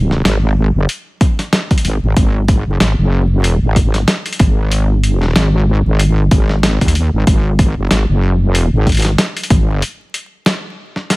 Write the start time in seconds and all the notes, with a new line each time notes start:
Already playing: G#1
0.11 snare
0.25 G#1, snare, closed hi-hat
0.75 F#1
0.89 closed hi-hat
1.21 kick, closed hi-hat
1.39 snare, closed hi-hat
1.53 snare, closed hi-hat
1.71 kick, closed hi-hat
1.78 closed hi-hat
1.85 G#1, closed hi-hat
2.03 G#1
2.17 G#1, kick, closed hi-hat
2.48 kick, closed hi-hat
2.67 F#1
2.80 G#1, snare, closed hi-hat
2.98 F#1
3.41 F1, closed hi-hat
3.62 G#1
3.76 kick, closed hi-hat
3.94 snare, closed hi-hat
4.08 snare, closed hi-hat
4.26 closed hi-hat
4.33 closed hi-hat
4.39 G#1, kick, closed hi-hat
4.71 closed hi-hat
5.03 closed hi-hat
5.22 snare
5.24 snare
5.29 snare
5.31 snare
5.33 G#1, snare
5.36 snare, closed hi-hat
5.86 G#1
5.99 closed hi-hat
6.31 G#1, kick, closed hi-hat
6.49 snare
6.63 snare, closed hi-hat
6.81 D#2, kick, closed hi-hat
6.88 closed hi-hat
6.95 closed hi-hat
7.13 G#1
7.27 G#1, kick, closed hi-hat
7.59 kick, closed hi-hat
7.77 F#1
7.91 G#1, snare, closed hi-hat
8.09 F#1
8.52 F1, closed hi-hat
8.73 G#1
8.87 kick, closed hi-hat
8.89 closed hi-hat
8.92 closed hi-hat
8.95 closed hi-hat
8.97 closed hi-hat
9.00 closed hi-hat
9.02 snare, closed hi-hat
9.05 closed hi-hat
9.18 snare, closed hi-hat
9.37 closed hi-hat
9.44 closed hi-hat
9.50 G#1, kick, closed hi-hat
9.82 closed hi-hat
10.14 closed hi-hat
10.46 snare, closed hi-hat
10.96 snare
11.10 snare, closed hi-hat